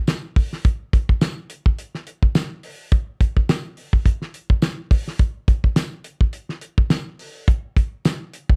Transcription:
0.07 snare, closed hi-hat, tambourine
0.36 kick, open hi-hat
0.53 snare
0.65 kick, closed hi-hat
0.93 kick, closed hi-hat
1.09 kick
1.21 snare, closed hi-hat, tambourine
1.50 closed hi-hat
1.66 kick
1.79 closed hi-hat
1.95 snare
2.07 closed hi-hat
2.23 kick
2.35 snare, closed hi-hat, tambourine
2.63 open hi-hat
2.92 kick, closed hi-hat
3.21 kick, closed hi-hat
3.37 kick
3.49 snare, closed hi-hat, tambourine
3.77 open hi-hat
3.93 kick
4.06 kick, closed hi-hat
4.22 snare
4.34 closed hi-hat
4.50 kick
4.62 snare, closed hi-hat, tambourine
4.91 kick, open hi-hat
5.08 snare
5.19 kick, closed hi-hat
5.48 kick, closed hi-hat
5.64 kick
5.76 snare, closed hi-hat, tambourine
6.04 closed hi-hat
6.21 kick
6.33 closed hi-hat
6.49 snare
6.61 closed hi-hat
6.78 kick
6.90 snare, closed hi-hat, tambourine
7.19 open hi-hat
7.48 kick, closed hi-hat
7.77 kick, closed hi-hat
8.05 snare, closed hi-hat, tambourine
8.33 closed hi-hat
8.49 kick

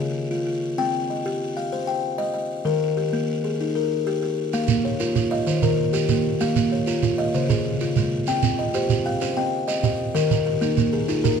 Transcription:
Already playing: C#3
0.00 G#4
0.31 F4
0.47 F4
0.78 C4 G5
1.10 D#5
1.26 G4
1.57 F5
1.73 C5
1.87 G5
2.18 D#5
2.34 D#5
2.65 D#3 A#4
2.97 G4
3.13 A#3
3.44 G#4
3.61 D#4
3.75 A#4
4.07 G4
4.23 G4
4.53 A#3 F5, shekere
4.68 A#3, shekere
4.85 C#5
5.00 F4 A#4, shekere
5.16 F4, shekere
5.31 D#5 F5
5.47 D#3 C5, shekere
5.62 D#3 A#4, shekere
5.93 G4, shekere
6.09 A#3 G4, shekere
6.40 A#3 G4 F5, shekere
6.56 A#3, shekere
6.72 C#5
6.87 F4 A#4, shekere
7.03 F4, shekere
7.18 D#5 F5
7.34 C#3 C5, shekere
7.49 C#3 F4 G#4, shekere
7.80 F4, shekere
7.96 G#3 F4, shekere
8.27 C4 F4 G5, shekere
8.43 C4, shekere
8.59 D#5
8.74 G4 C5, shekere
8.89 G4, shekere
9.06 F5 G5
9.21 C#4 C5, shekere
9.37 C4 D#5 G5
9.68 D#5, shekere
9.83 G4 D#5, shekere
10.15 D#3 A#4 D#5, shekere
10.31 D#3, shekere
10.46 G4
10.61 A#3 D#4, shekere
10.77 A#3, shekere
10.93 G#4 A#4
11.08 D#4 F4, shekere
11.24 D#3 G4 A#4, shekere

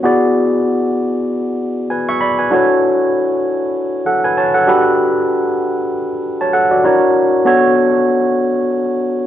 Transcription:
0.03 B3 E4 F#4 G#4 D5
1.90 B4 G#5
2.09 E5 C#6
2.21 D5 B5
2.39 B4 G#5
2.51 D4 E4 F#4 A4 C#5
4.06 A4 F#5
4.24 B4 G#5
4.37 C#5 A5
4.54 A4 F#5
4.67 D4 F#4 G4 A4 B4
6.41 C#5 A5
6.53 A4 F#5
6.71 F#4 D5
6.84 D4 E4 F#4 A#4 C#5
7.45 B3 D4 F#4 A4 C#5

